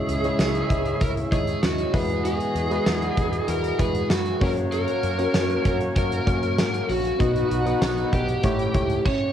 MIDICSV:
0, 0, Header, 1, 8, 480
1, 0, Start_track
1, 0, Tempo, 618557
1, 1746, Time_signature, 4, 2, 24, 8
1, 7236, End_track
2, 0, Start_track
2, 0, Title_t, "Horn section"
2, 0, Program_c, 0, 61
2, 0, Note_on_c, 0, 68, 80
2, 0, Note_on_c, 0, 73, 78
2, 0, Note_on_c, 0, 76, 89
2, 1235, Note_off_c, 0, 68, 0
2, 1235, Note_off_c, 0, 73, 0
2, 1236, Note_off_c, 0, 76, 0
2, 1501, Note_on_c, 0, 59, 78
2, 1501, Note_on_c, 0, 68, 77
2, 1501, Note_on_c, 0, 75, 85
2, 3152, Note_off_c, 0, 68, 0
2, 3153, Note_off_c, 0, 59, 0
2, 3153, Note_off_c, 0, 75, 0
2, 3424, Note_on_c, 0, 70, 81
2, 3424, Note_on_c, 0, 73, 87
2, 3425, Note_on_c, 0, 66, 76
2, 5314, Note_off_c, 0, 70, 0
2, 5314, Note_off_c, 0, 73, 0
2, 5315, Note_off_c, 0, 66, 0
2, 5585, Note_on_c, 0, 66, 77
2, 5585, Note_on_c, 0, 71, 85
2, 5587, Note_on_c, 0, 63, 76
2, 6291, Note_off_c, 0, 66, 0
2, 6291, Note_off_c, 0, 71, 0
2, 6292, Note_off_c, 0, 63, 0
2, 6547, Note_on_c, 0, 64, 76
2, 6548, Note_on_c, 0, 61, 72
2, 6548, Note_on_c, 0, 67, 82
2, 6782, Note_off_c, 0, 61, 0
2, 6782, Note_off_c, 0, 64, 0
2, 6782, Note_off_c, 0, 67, 0
2, 7236, End_track
3, 0, Start_track
3, 0, Title_t, "Lead electric guitar"
3, 0, Program_c, 1, 29
3, 0, Note_on_c, 1, 68, 102
3, 786, Note_on_c, 1, 70, 96
3, 816, Note_off_c, 1, 68, 0
3, 851, Note_off_c, 1, 70, 0
3, 1027, Note_on_c, 1, 68, 77
3, 1264, Note_off_c, 1, 68, 0
3, 1268, Note_on_c, 1, 66, 92
3, 1490, Note_off_c, 1, 66, 0
3, 1508, Note_on_c, 1, 68, 83
3, 1736, Note_off_c, 1, 68, 0
3, 1745, Note_on_c, 1, 68, 97
3, 2701, Note_on_c, 1, 70, 100
3, 2735, Note_off_c, 1, 68, 0
3, 2927, Note_off_c, 1, 70, 0
3, 2939, Note_on_c, 1, 68, 79
3, 3182, Note_off_c, 1, 68, 0
3, 3185, Note_on_c, 1, 66, 88
3, 3425, Note_on_c, 1, 70, 85
3, 3433, Note_off_c, 1, 66, 0
3, 3490, Note_off_c, 1, 70, 0
3, 3664, Note_on_c, 1, 70, 101
3, 4382, Note_off_c, 1, 70, 0
3, 4392, Note_on_c, 1, 70, 94
3, 4456, Note_off_c, 1, 70, 0
3, 4632, Note_on_c, 1, 70, 100
3, 5318, Note_off_c, 1, 70, 0
3, 5353, Note_on_c, 1, 66, 84
3, 6058, Note_off_c, 1, 66, 0
3, 6067, Note_on_c, 1, 66, 86
3, 6290, Note_off_c, 1, 66, 0
3, 6315, Note_on_c, 1, 67, 86
3, 7000, Note_off_c, 1, 67, 0
3, 7029, Note_on_c, 1, 73, 101
3, 7236, Note_off_c, 1, 73, 0
3, 7236, End_track
4, 0, Start_track
4, 0, Title_t, "FM electric piano"
4, 0, Program_c, 2, 5
4, 0, Control_c, 2, 64, 127
4, 0, Note_on_c, 2, 49, 62
4, 0, Note_on_c, 2, 56, 74
4, 0, Note_on_c, 2, 64, 62
4, 0, Note_on_c, 2, 73, 76
4, 0, Note_on_c, 2, 75, 65
4, 133, Note_off_c, 2, 56, 0
4, 135, Note_off_c, 2, 75, 0
4, 136, Note_off_c, 2, 64, 0
4, 138, Note_off_c, 2, 73, 0
4, 185, Note_on_c, 2, 56, 69
4, 188, Note_on_c, 2, 75, 63
4, 192, Note_on_c, 2, 64, 65
4, 195, Note_on_c, 2, 73, 75
4, 515, Note_off_c, 2, 49, 0
4, 906, Note_off_c, 2, 56, 0
4, 907, Note_off_c, 2, 75, 0
4, 909, Note_off_c, 2, 64, 0
4, 910, Note_off_c, 2, 73, 0
4, 1021, Note_on_c, 2, 56, 67
4, 1023, Note_on_c, 2, 75, 64
4, 1028, Note_on_c, 2, 64, 66
4, 1030, Note_on_c, 2, 73, 77
4, 1491, Note_off_c, 2, 56, 0
4, 1493, Note_off_c, 2, 64, 0
4, 1500, Note_on_c, 2, 56, 79
4, 1502, Note_on_c, 2, 52, 62
4, 1503, Note_on_c, 2, 64, 69
4, 1505, Note_off_c, 2, 75, 0
4, 1505, Note_on_c, 2, 66, 72
4, 1508, Note_off_c, 2, 73, 0
4, 1508, Note_on_c, 2, 71, 85
4, 1518, Control_c, 2, 64, 0
4, 1674, Control_c, 2, 64, 127
4, 2018, Note_off_c, 2, 56, 0
4, 2019, Note_off_c, 2, 64, 0
4, 2020, Note_off_c, 2, 66, 0
4, 2021, Note_off_c, 2, 71, 0
4, 2100, Note_on_c, 2, 56, 72
4, 2103, Note_on_c, 2, 64, 64
4, 2105, Note_on_c, 2, 66, 61
4, 2110, Note_on_c, 2, 71, 78
4, 2193, Note_off_c, 2, 52, 0
4, 2823, Note_off_c, 2, 56, 0
4, 2825, Note_off_c, 2, 64, 0
4, 2826, Note_off_c, 2, 66, 0
4, 2828, Note_off_c, 2, 71, 0
4, 2940, Note_on_c, 2, 56, 73
4, 2942, Note_on_c, 2, 64, 63
4, 2944, Note_on_c, 2, 66, 64
4, 2948, Note_on_c, 2, 71, 80
4, 3415, Note_off_c, 2, 66, 0
4, 3418, Note_on_c, 2, 58, 79
4, 3422, Note_on_c, 2, 61, 69
4, 3423, Note_off_c, 2, 56, 0
4, 3424, Note_off_c, 2, 64, 0
4, 3425, Note_on_c, 2, 66, 73
4, 3427, Note_off_c, 2, 71, 0
4, 3428, Note_on_c, 2, 73, 85
4, 3436, Control_c, 2, 64, 0
4, 3584, Control_c, 2, 64, 127
4, 3937, Note_off_c, 2, 58, 0
4, 3938, Note_off_c, 2, 61, 0
4, 3940, Note_off_c, 2, 66, 0
4, 3942, Note_off_c, 2, 73, 0
4, 4022, Note_on_c, 2, 58, 75
4, 4023, Note_on_c, 2, 61, 68
4, 4028, Note_on_c, 2, 66, 67
4, 4030, Note_on_c, 2, 73, 79
4, 4744, Note_off_c, 2, 58, 0
4, 4745, Note_off_c, 2, 61, 0
4, 4747, Note_off_c, 2, 66, 0
4, 4748, Note_off_c, 2, 73, 0
4, 4861, Note_on_c, 2, 58, 74
4, 4862, Note_on_c, 2, 61, 69
4, 4867, Note_on_c, 2, 66, 65
4, 4870, Note_on_c, 2, 73, 78
4, 5481, Note_off_c, 2, 58, 0
4, 5482, Note_off_c, 2, 61, 0
4, 5484, Note_off_c, 2, 66, 0
4, 5485, Note_off_c, 2, 73, 0
4, 5578, Note_on_c, 2, 59, 73
4, 5581, Note_on_c, 2, 63, 65
4, 5583, Note_on_c, 2, 47, 67
4, 5583, Note_on_c, 2, 66, 66
4, 5587, Note_on_c, 2, 75, 81
4, 5596, Control_c, 2, 64, 0
4, 5743, Control_c, 2, 64, 127
4, 5891, Note_off_c, 2, 59, 0
4, 5892, Note_off_c, 2, 63, 0
4, 5893, Note_off_c, 2, 66, 0
4, 5895, Note_off_c, 2, 75, 0
4, 5939, Note_on_c, 2, 59, 72
4, 5941, Note_on_c, 2, 63, 70
4, 5944, Note_on_c, 2, 78, 66
4, 5948, Note_on_c, 2, 75, 79
4, 6274, Note_off_c, 2, 47, 0
4, 6542, Note_off_c, 2, 59, 0
4, 6544, Note_off_c, 2, 63, 0
4, 6545, Note_off_c, 2, 78, 0
4, 6545, Note_on_c, 2, 57, 76
4, 6547, Note_off_c, 2, 75, 0
4, 6547, Note_on_c, 2, 64, 73
4, 6548, Note_on_c, 2, 45, 62
4, 6549, Note_on_c, 2, 67, 76
4, 6553, Note_on_c, 2, 73, 88
4, 6557, Control_c, 2, 64, 0
4, 6698, Control_c, 2, 64, 127
4, 6751, Note_off_c, 2, 57, 0
4, 6752, Note_off_c, 2, 64, 0
4, 6753, Note_off_c, 2, 67, 0
4, 6755, Note_off_c, 2, 73, 0
4, 6782, Note_on_c, 2, 57, 75
4, 6783, Note_on_c, 2, 64, 68
4, 6788, Note_on_c, 2, 67, 68
4, 6789, Note_on_c, 2, 73, 80
4, 6996, Note_off_c, 2, 45, 0
4, 7024, Note_off_c, 2, 57, 0
4, 7025, Note_off_c, 2, 64, 0
4, 7027, Note_off_c, 2, 67, 0
4, 7028, Note_off_c, 2, 73, 0
4, 7035, Control_c, 2, 64, 0
4, 7236, End_track
5, 0, Start_track
5, 0, Title_t, "Analog synth pad"
5, 0, Program_c, 3, 89
5, 0, Note_on_c, 3, 49, 78
5, 0, Note_on_c, 3, 61, 74
5, 0, Note_on_c, 3, 64, 88
5, 1492, Note_off_c, 3, 49, 0
5, 1492, Note_off_c, 3, 61, 0
5, 1492, Note_off_c, 3, 64, 0
5, 1500, Note_on_c, 3, 52, 77
5, 1500, Note_on_c, 3, 68, 83
5, 1502, Note_on_c, 3, 59, 67
5, 1503, Note_on_c, 3, 66, 73
5, 3404, Note_off_c, 3, 52, 0
5, 3404, Note_off_c, 3, 68, 0
5, 3405, Note_off_c, 3, 59, 0
5, 3421, Note_on_c, 3, 61, 73
5, 3424, Note_on_c, 3, 58, 77
5, 5554, Note_off_c, 3, 66, 0
5, 5562, Note_off_c, 3, 61, 0
5, 5564, Note_off_c, 3, 58, 0
5, 5589, Note_on_c, 3, 78, 84
5, 5590, Note_on_c, 3, 59, 81
5, 5592, Note_on_c, 3, 63, 73
5, 6538, Note_off_c, 3, 59, 0
5, 6538, Note_off_c, 3, 78, 0
5, 6539, Note_off_c, 3, 63, 0
5, 6550, Note_on_c, 3, 61, 68
5, 6551, Note_on_c, 3, 57, 72
5, 6553, Note_on_c, 3, 67, 87
5, 7023, Note_off_c, 3, 61, 0
5, 7024, Note_off_c, 3, 57, 0
5, 7025, Note_off_c, 3, 67, 0
5, 7236, End_track
6, 0, Start_track
6, 0, Title_t, "Marimba"
6, 0, Program_c, 4, 12
6, 7026, Note_on_c, 4, 61, 91
6, 7236, Note_off_c, 4, 61, 0
6, 7236, End_track
7, 0, Start_track
7, 0, Title_t, "Fretless electric bass"
7, 0, Program_c, 5, 35
7, 66, Note_on_c, 5, 37, 93
7, 239, Note_off_c, 5, 37, 0
7, 305, Note_on_c, 5, 37, 96
7, 478, Note_off_c, 5, 37, 0
7, 544, Note_on_c, 5, 37, 94
7, 717, Note_off_c, 5, 37, 0
7, 784, Note_on_c, 5, 37, 99
7, 957, Note_off_c, 5, 37, 0
7, 1023, Note_on_c, 5, 39, 86
7, 1197, Note_off_c, 5, 39, 0
7, 1262, Note_on_c, 5, 39, 81
7, 1436, Note_off_c, 5, 39, 0
7, 1504, Note_on_c, 5, 40, 91
7, 1850, Note_off_c, 5, 40, 0
7, 1979, Note_on_c, 5, 40, 86
7, 2154, Note_off_c, 5, 40, 0
7, 2222, Note_on_c, 5, 40, 98
7, 2397, Note_off_c, 5, 40, 0
7, 2464, Note_on_c, 5, 40, 97
7, 2637, Note_off_c, 5, 40, 0
7, 2700, Note_on_c, 5, 40, 99
7, 2875, Note_off_c, 5, 40, 0
7, 2941, Note_on_c, 5, 40, 89
7, 3116, Note_off_c, 5, 40, 0
7, 3183, Note_on_c, 5, 42, 84
7, 3357, Note_off_c, 5, 42, 0
7, 3424, Note_on_c, 5, 42, 94
7, 3770, Note_off_c, 5, 42, 0
7, 3904, Note_on_c, 5, 42, 92
7, 4078, Note_off_c, 5, 42, 0
7, 4147, Note_on_c, 5, 42, 93
7, 4319, Note_off_c, 5, 42, 0
7, 4385, Note_on_c, 5, 42, 100
7, 4558, Note_off_c, 5, 42, 0
7, 4626, Note_on_c, 5, 42, 97
7, 4799, Note_off_c, 5, 42, 0
7, 4864, Note_on_c, 5, 42, 91
7, 5103, Note_off_c, 5, 42, 0
7, 5103, Note_on_c, 5, 44, 89
7, 5277, Note_off_c, 5, 44, 0
7, 5346, Note_on_c, 5, 34, 87
7, 5519, Note_off_c, 5, 34, 0
7, 5588, Note_on_c, 5, 35, 98
7, 5760, Note_off_c, 5, 35, 0
7, 5823, Note_on_c, 5, 35, 90
7, 5997, Note_off_c, 5, 35, 0
7, 6062, Note_on_c, 5, 35, 103
7, 6237, Note_off_c, 5, 35, 0
7, 6305, Note_on_c, 5, 35, 95
7, 6478, Note_off_c, 5, 35, 0
7, 6546, Note_on_c, 5, 33, 100
7, 6719, Note_off_c, 5, 33, 0
7, 6784, Note_on_c, 5, 37, 86
7, 6958, Note_off_c, 5, 37, 0
7, 7236, End_track
8, 0, Start_track
8, 0, Title_t, "Drums"
8, 68, Note_on_c, 9, 42, 70
8, 145, Note_off_c, 9, 42, 0
8, 187, Note_on_c, 9, 42, 44
8, 265, Note_off_c, 9, 42, 0
8, 303, Note_on_c, 9, 38, 104
8, 308, Note_on_c, 9, 54, 87
8, 381, Note_off_c, 9, 38, 0
8, 385, Note_off_c, 9, 54, 0
8, 425, Note_on_c, 9, 42, 39
8, 503, Note_off_c, 9, 42, 0
8, 545, Note_on_c, 9, 36, 86
8, 545, Note_on_c, 9, 42, 64
8, 622, Note_off_c, 9, 42, 0
8, 623, Note_off_c, 9, 36, 0
8, 664, Note_on_c, 9, 42, 43
8, 741, Note_off_c, 9, 42, 0
8, 784, Note_on_c, 9, 42, 87
8, 786, Note_on_c, 9, 36, 97
8, 861, Note_off_c, 9, 42, 0
8, 864, Note_off_c, 9, 36, 0
8, 910, Note_on_c, 9, 42, 50
8, 987, Note_off_c, 9, 42, 0
8, 1025, Note_on_c, 9, 36, 91
8, 1025, Note_on_c, 9, 42, 67
8, 1102, Note_off_c, 9, 36, 0
8, 1102, Note_off_c, 9, 42, 0
8, 1144, Note_on_c, 9, 42, 48
8, 1221, Note_off_c, 9, 42, 0
8, 1265, Note_on_c, 9, 38, 107
8, 1265, Note_on_c, 9, 54, 80
8, 1343, Note_off_c, 9, 38, 0
8, 1343, Note_off_c, 9, 54, 0
8, 1384, Note_on_c, 9, 42, 47
8, 1462, Note_off_c, 9, 42, 0
8, 1504, Note_on_c, 9, 46, 78
8, 1505, Note_on_c, 9, 36, 102
8, 1581, Note_off_c, 9, 46, 0
8, 1582, Note_off_c, 9, 36, 0
8, 1627, Note_on_c, 9, 42, 46
8, 1705, Note_off_c, 9, 42, 0
8, 1747, Note_on_c, 9, 42, 74
8, 1824, Note_off_c, 9, 42, 0
8, 1866, Note_on_c, 9, 42, 49
8, 1944, Note_off_c, 9, 42, 0
8, 1985, Note_on_c, 9, 42, 73
8, 2062, Note_off_c, 9, 42, 0
8, 2105, Note_on_c, 9, 42, 44
8, 2182, Note_off_c, 9, 42, 0
8, 2223, Note_on_c, 9, 38, 107
8, 2224, Note_on_c, 9, 54, 85
8, 2301, Note_off_c, 9, 38, 0
8, 2302, Note_off_c, 9, 54, 0
8, 2346, Note_on_c, 9, 42, 41
8, 2423, Note_off_c, 9, 42, 0
8, 2463, Note_on_c, 9, 42, 61
8, 2465, Note_on_c, 9, 36, 84
8, 2541, Note_off_c, 9, 42, 0
8, 2542, Note_off_c, 9, 36, 0
8, 2583, Note_on_c, 9, 42, 45
8, 2661, Note_off_c, 9, 42, 0
8, 2702, Note_on_c, 9, 42, 92
8, 2779, Note_off_c, 9, 42, 0
8, 2824, Note_on_c, 9, 42, 51
8, 2902, Note_off_c, 9, 42, 0
8, 2943, Note_on_c, 9, 42, 67
8, 2944, Note_on_c, 9, 36, 87
8, 3021, Note_off_c, 9, 36, 0
8, 3021, Note_off_c, 9, 42, 0
8, 3062, Note_on_c, 9, 42, 48
8, 3140, Note_off_c, 9, 42, 0
8, 3182, Note_on_c, 9, 38, 110
8, 3186, Note_on_c, 9, 54, 81
8, 3259, Note_off_c, 9, 38, 0
8, 3263, Note_off_c, 9, 54, 0
8, 3303, Note_on_c, 9, 42, 45
8, 3380, Note_off_c, 9, 42, 0
8, 3425, Note_on_c, 9, 36, 105
8, 3425, Note_on_c, 9, 46, 75
8, 3503, Note_off_c, 9, 36, 0
8, 3503, Note_off_c, 9, 46, 0
8, 3547, Note_on_c, 9, 42, 46
8, 3625, Note_off_c, 9, 42, 0
8, 3664, Note_on_c, 9, 42, 75
8, 3742, Note_off_c, 9, 42, 0
8, 3784, Note_on_c, 9, 42, 51
8, 3862, Note_off_c, 9, 42, 0
8, 3905, Note_on_c, 9, 42, 72
8, 3982, Note_off_c, 9, 42, 0
8, 4026, Note_on_c, 9, 42, 43
8, 4103, Note_off_c, 9, 42, 0
8, 4145, Note_on_c, 9, 38, 109
8, 4146, Note_on_c, 9, 54, 87
8, 4223, Note_off_c, 9, 38, 0
8, 4224, Note_off_c, 9, 54, 0
8, 4266, Note_on_c, 9, 42, 39
8, 4344, Note_off_c, 9, 42, 0
8, 4387, Note_on_c, 9, 36, 87
8, 4387, Note_on_c, 9, 42, 65
8, 4464, Note_off_c, 9, 42, 0
8, 4465, Note_off_c, 9, 36, 0
8, 4505, Note_on_c, 9, 42, 45
8, 4583, Note_off_c, 9, 42, 0
8, 4626, Note_on_c, 9, 42, 90
8, 4627, Note_on_c, 9, 36, 99
8, 4703, Note_off_c, 9, 42, 0
8, 4704, Note_off_c, 9, 36, 0
8, 4749, Note_on_c, 9, 42, 55
8, 4827, Note_off_c, 9, 42, 0
8, 4867, Note_on_c, 9, 36, 92
8, 4867, Note_on_c, 9, 42, 68
8, 4944, Note_off_c, 9, 36, 0
8, 4945, Note_off_c, 9, 42, 0
8, 4988, Note_on_c, 9, 42, 48
8, 5065, Note_off_c, 9, 42, 0
8, 5109, Note_on_c, 9, 38, 113
8, 5109, Note_on_c, 9, 54, 81
8, 5186, Note_off_c, 9, 54, 0
8, 5187, Note_off_c, 9, 38, 0
8, 5230, Note_on_c, 9, 42, 48
8, 5308, Note_off_c, 9, 42, 0
8, 5350, Note_on_c, 9, 46, 79
8, 5427, Note_off_c, 9, 46, 0
8, 5472, Note_on_c, 9, 42, 46
8, 5549, Note_off_c, 9, 42, 0
8, 5588, Note_on_c, 9, 36, 108
8, 5590, Note_on_c, 9, 42, 73
8, 5665, Note_off_c, 9, 36, 0
8, 5667, Note_off_c, 9, 42, 0
8, 5709, Note_on_c, 9, 42, 49
8, 5787, Note_off_c, 9, 42, 0
8, 5830, Note_on_c, 9, 42, 70
8, 5907, Note_off_c, 9, 42, 0
8, 5947, Note_on_c, 9, 42, 47
8, 6025, Note_off_c, 9, 42, 0
8, 6066, Note_on_c, 9, 38, 112
8, 6066, Note_on_c, 9, 54, 85
8, 6144, Note_off_c, 9, 38, 0
8, 6144, Note_off_c, 9, 54, 0
8, 6187, Note_on_c, 9, 42, 42
8, 6265, Note_off_c, 9, 42, 0
8, 6306, Note_on_c, 9, 42, 64
8, 6307, Note_on_c, 9, 36, 88
8, 6384, Note_off_c, 9, 36, 0
8, 6384, Note_off_c, 9, 42, 0
8, 6428, Note_on_c, 9, 42, 45
8, 6506, Note_off_c, 9, 42, 0
8, 6544, Note_on_c, 9, 42, 88
8, 6547, Note_on_c, 9, 36, 100
8, 6622, Note_off_c, 9, 42, 0
8, 6625, Note_off_c, 9, 36, 0
8, 6667, Note_on_c, 9, 42, 52
8, 6745, Note_off_c, 9, 42, 0
8, 6784, Note_on_c, 9, 42, 65
8, 6785, Note_on_c, 9, 36, 91
8, 6862, Note_off_c, 9, 42, 0
8, 6863, Note_off_c, 9, 36, 0
8, 6903, Note_on_c, 9, 42, 48
8, 6980, Note_off_c, 9, 42, 0
8, 7026, Note_on_c, 9, 36, 105
8, 7026, Note_on_c, 9, 49, 86
8, 7103, Note_off_c, 9, 49, 0
8, 7104, Note_off_c, 9, 36, 0
8, 7236, End_track
0, 0, End_of_file